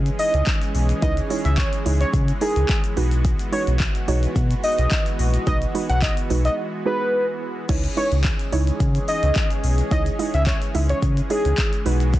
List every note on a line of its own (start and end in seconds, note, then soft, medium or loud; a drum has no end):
0.00 7.65 E3 medium
0.00 0.14 G#3 loud
0.00 7.65 G#3 medium
0.00 2.93 C#4 medium
0.00 0.14 D#4 medium
0.00 0.14 E4 medium
0.00 2.93 G#4 medium
0.00 0.14 C#5 loud
0.06 closed hi-hat medium
0.06 shaker medium
0.19 0.59 D#5 loud
0.19 open hi-hat medium
0.19 shaker medium
0.34 0.43 C#2 medium
0.34 closed hi-hat medium
0.34 shaker medium
0.47 kick loud
0.47 clap loud
0.47 closed hi-hat medium
0.47 shaker medium
0.62 closed hi-hat medium
0.62 shaker medium
0.75 0.93 B1 medium
0.75 open hi-hat medium
0.75 shaker soft
0.75 shaker medium
0.89 closed hi-hat medium
0.89 shaker medium
1.02 1.21 C#2 loud
1.02 1.16 G#3 medium
1.02 1.16 D#4 medium
1.02 1.16 E4 medium
1.02 1.16 B4 medium
1.02 1.12 D#5 loud
1.02 kick loud
1.02 closed hi-hat medium
1.02 shaker medium
1.17 closed hi-hat medium
1.17 shaker medium
1.30 1.55 G#3 medium
1.30 1.56 D#4 medium
1.30 1.56 E4 medium
1.30 1.56 C#5 medium
1.30 open hi-hat medium
1.30 shaker medium
1.45 1.64 C#2 loud
1.45 1.54 E5 medium
1.45 closed hi-hat soft
1.45 shaker medium
1.58 1.68 C#5 medium
1.58 kick loud
1.58 clap loud
1.58 closed hi-hat medium
1.58 shaker medium
1.73 closed hi-hat medium
1.73 shaker medium
1.85 2.04 C#2 loud
1.85 2.11 G#3 medium
1.85 2.11 D#4 medium
1.85 2.11 E4 medium
1.85 2.11 C#5 medium
1.85 open hi-hat medium
1.85 shaker medium
2.01 2.10 C#5 medium
2.01 closed hi-hat soft
2.01 shaker soft
2.01 shaker medium
2.13 2.32 C#3 loud
2.13 kick loud
2.13 closed hi-hat medium
2.13 shaker medium
2.28 closed hi-hat medium
2.28 shaker medium
2.41 2.80 G#3 medium
2.41 2.80 D#4 medium
2.41 2.80 E4 medium
2.41 2.81 G#4 medium
2.41 2.80 A#4 medium
2.41 open hi-hat medium
2.41 shaker medium
2.56 2.65 C#2 medium
2.56 closed hi-hat medium
2.56 shaker medium
2.69 kick loud
2.69 clap loud
2.69 closed hi-hat medium
2.69 shaker medium
2.84 closed hi-hat medium
2.84 shaker medium
2.97 3.34 B1 medium
2.97 3.42 G#3 medium
2.97 7.65 B3 medium
2.97 3.42 D#4 medium
2.97 3.42 F#4 medium
2.97 7.65 F#4 medium
2.97 3.42 B4 loud
2.97 open hi-hat medium
2.97 shaker soft
2.97 shaker medium
3.11 closed hi-hat medium
3.11 shaker medium
3.25 kick loud
3.25 closed hi-hat medium
3.25 shaker medium
3.39 closed hi-hat medium
3.39 shaker medium
3.52 3.78 G#3 medium
3.52 3.78 D#4 medium
3.52 3.78 F#4 medium
3.52 3.78 B4 medium
3.52 3.63 C#5 medium
3.52 open hi-hat medium
3.52 shaker medium
3.67 3.86 B1 loud
3.67 closed hi-hat soft
3.67 shaker medium
3.80 kick loud
3.80 clap loud
3.80 closed hi-hat medium
3.80 shaker medium
3.95 closed hi-hat medium
3.95 shaker medium
4.08 4.27 B1 loud
4.08 4.59 G#3 loud
4.08 4.59 D#4 medium
4.08 4.59 F#4 medium
4.08 4.59 C#5 loud
4.08 open hi-hat medium
4.08 shaker medium
4.23 closed hi-hat soft
4.23 shaker soft
4.23 shaker medium
4.36 4.54 B2 loud
4.36 kick loud
4.36 closed hi-hat medium
4.36 shaker medium
4.51 closed hi-hat medium
4.51 shaker medium
4.64 5.04 D#5 medium
4.64 open hi-hat medium
4.64 shaker medium
4.78 4.87 B1 medium
4.78 closed hi-hat medium
4.78 shaker medium
4.91 kick loud
4.91 clap loud
4.91 closed hi-hat medium
4.91 shaker medium
5.06 closed hi-hat medium
5.06 shaker medium
5.19 5.38 A#1 medium
5.19 open hi-hat medium
5.19 shaker medium
5.34 closed hi-hat medium
5.34 shaker medium
5.47 5.66 B1 loud
5.47 5.60 G#3 medium
5.47 5.60 D#4 medium
5.47 5.60 F#4 medium
5.47 5.60 B4 medium
5.47 5.57 D#5 loud
5.47 kick loud
5.47 closed hi-hat medium
5.47 shaker medium
5.62 closed hi-hat medium
5.62 shaker medium
5.74 6.00 G#3 medium
5.74 6.00 D#4 medium
5.74 6.00 F#4 medium
5.74 6.00 B4 medium
5.74 open hi-hat medium
5.74 shaker soft
5.89 6.08 B1 loud
5.89 5.98 F#5 medium
5.89 closed hi-hat soft
5.89 shaker medium
6.02 6.13 D#5 medium
6.02 kick loud
6.02 clap loud
6.02 closed hi-hat medium
6.02 shaker medium
6.17 closed hi-hat medium
6.17 shaker medium
6.30 6.49 B1 medium
6.30 6.55 G#3 medium
6.30 6.56 D#4 medium
6.30 6.56 F#4 medium
6.30 6.56 B4 medium
6.30 open hi-hat medium
6.30 shaker medium
6.45 6.54 D#5 medium
6.45 closed hi-hat soft
6.45 shaker medium
6.86 7.24 G#3 medium
6.86 7.24 D#4 medium
6.86 7.24 F#4 medium
6.86 7.24 G#4 medium
6.86 7.26 B4 medium
7.69 7.88 C#2 loud
7.69 12.20 E3 medium
7.69 7.82 G#3 medium
7.69 12.20 G#3 medium
7.69 11.82 C#4 medium
7.69 7.82 D#4 medium
7.69 7.82 E4 medium
7.69 11.82 G#4 medium
7.69 7.83 C#5 loud
7.69 kick loud
7.69 closed hi-hat medium
7.69 crash loud
7.69 shaker medium
7.84 closed hi-hat medium
7.84 shaker medium
7.97 8.22 G#3 medium
7.97 8.22 D#4 medium
7.97 8.22 E4 medium
7.97 8.22 B4 medium
7.97 8.07 C#5 medium
7.97 open hi-hat medium
7.97 shaker medium
8.12 8.30 C#2 loud
8.12 closed hi-hat soft
8.12 shaker medium
8.24 kick loud
8.24 clap loud
8.24 closed hi-hat medium
8.24 shaker medium
8.39 closed hi-hat medium
8.39 shaker medium
8.52 8.71 C#2 medium
8.52 9.03 G#3 medium
8.52 9.03 D#4 medium
8.52 9.03 E4 medium
8.52 9.03 C#5 loud
8.52 open hi-hat medium
8.52 shaker medium
8.67 closed hi-hat medium
8.67 shaker medium
8.80 8.99 C#3 loud
8.80 kick loud
8.80 closed hi-hat medium
8.80 shaker medium
8.95 closed hi-hat medium
8.95 shaker medium
8.95 shaker soft
9.08 9.48 D#5 medium
9.08 open hi-hat medium
9.08 shaker medium
9.23 9.31 C#2 medium
9.23 closed hi-hat medium
9.23 shaker medium
9.36 kick loud
9.36 clap loud
9.36 closed hi-hat medium
9.36 shaker medium
9.51 closed hi-hat medium
9.51 shaker medium
9.64 9.82 B1 loud
9.64 open hi-hat medium
9.64 shaker medium
9.78 closed hi-hat medium
9.78 shaker medium
9.91 10.10 C#2 loud
9.91 10.05 G#3 medium
9.91 10.05 D#4 medium
9.91 10.05 E4 medium
9.91 10.05 C#5 medium
9.91 10.02 D#5 loud
9.91 kick loud
9.91 closed hi-hat medium
9.91 shaker medium
10.06 closed hi-hat medium
10.06 shaker medium
10.19 10.44 G#3 medium
10.19 10.44 D#4 medium
10.19 10.45 E4 medium
10.19 10.45 D#5 medium
10.19 open hi-hat medium
10.19 shaker medium
10.34 10.53 C#2 loud
10.34 10.43 E5 medium
10.34 closed hi-hat soft
10.34 shaker medium
10.47 10.57 C#5 medium
10.47 kick loud
10.47 clap loud
10.47 closed hi-hat medium
10.47 shaker medium
10.62 closed hi-hat medium
10.62 shaker medium
10.74 10.93 C#2 loud
10.74 11.00 G#3 medium
10.74 11.00 D#4 medium
10.74 11.00 E4 medium
10.74 11.00 E5 medium
10.74 open hi-hat medium
10.74 shaker medium
10.89 10.99 C#5 medium
10.89 closed hi-hat soft
10.89 shaker soft
10.89 shaker medium
11.02 11.21 C#3 loud
11.02 kick loud
11.02 closed hi-hat medium
11.02 shaker medium
11.17 closed hi-hat medium
11.17 shaker medium
11.30 11.69 G#3 medium
11.30 11.69 D#4 medium
11.30 11.69 E4 medium
11.30 11.70 G#4 medium
11.30 11.69 C#5 medium
11.30 open hi-hat medium
11.30 shaker medium
11.45 11.54 C#2 medium
11.45 closed hi-hat medium
11.45 shaker medium
11.58 kick loud
11.58 clap loud
11.58 closed hi-hat medium
11.58 shaker medium
11.73 closed hi-hat medium
11.73 shaker medium
11.85 12.20 B1 loud
11.85 12.20 G#3 medium
11.85 12.20 B3 medium
11.85 12.20 D#4 medium
11.85 12.20 F#4 medium
11.85 12.20 B4 loud
11.85 open hi-hat medium
11.85 shaker medium
12.00 closed hi-hat medium
12.00 shaker medium
12.13 kick loud
12.13 closed hi-hat medium
12.13 shaker medium